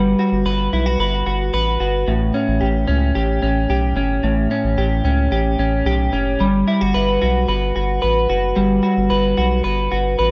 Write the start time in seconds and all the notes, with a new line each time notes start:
Already playing: G1 G3 F#4 B4
0.19 F#4
0.32 G1
0.45 G1 B4
0.73 B1 E4
0.86 F#4
0.99 G1 B4
1.26 G1 F#4
1.54 A1 B4
1.80 G1 F#4
2.07 A1 A2
2.34 C#4
2.48 A1
2.61 A1 G4
2.88 C#2 C#4
3.15 A1 G4
3.42 A1 C#4
3.70 B1 G4
3.96 G1 C#4
4.23 A1 A2
4.51 C#4
4.64 A1
4.78 A1 G4
5.05 C#2 C#4
5.32 A1 G4
5.59 A1 C#4
5.86 B1 G4
6.13 F#1 C#4
6.40 G1 G3
6.68 E4
6.81 G1 F#4
6.94 G1 B4
7.22 B1 F#4
7.48 G1 B4
7.76 G1 F#4
8.02 A1 B4
8.30 F#1 F#4
8.56 G1 G3
8.83 F#4
8.98 G1
9.10 G1 B4
9.38 B1 F#4
9.64 G1 B4
9.92 G1 F#4
10.19 A1 B4